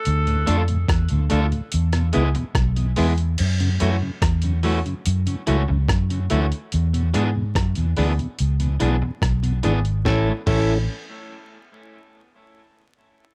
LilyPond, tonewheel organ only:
\new Staff \with { instrumentName = "Tonewheel organ" } { \clef bass \time 4/4 \key a \major \tempo 4 = 72 << { r8 <a d' f'>8 r8 <a d' f'>8 r8 <gis b e'>8 r8 <gis b e'>8 | r8 <fis a e'>8 r8 <fis a e'>8 r8 <fis a e'>8 r8 <fis a e'>8 | r8 <e gis d'>8 r8 <e gis d'>8 r8 <e gis d'>8 r8 <e gis d'>8 | <e a cis'>8 <e a cis'>8 r2. | } \\ { r16 <d, a,>16 r16 <d, a,>16 r16 <d, a,>16 r16 <d, a,>16 r16 <e, b,>16 r16 <e, b,>16 r16 <e, b,>16 r8 | r16 <fis, cis>16 r16 <fis, cis>16 r16 <fis, cis>16 r16 <fis, cis>16 r16 <fis, cis>16 r16 <fis, cis>16 r16 <fis, cis>16 r8 | r16 <e, b,>16 r16 <e, b,>16 r16 <e, b,>16 r16 <e, b,>16 r16 <e, b,>16 r16 <e, b,>16 r16 <e, b,>16 r8 | r1 | } >> }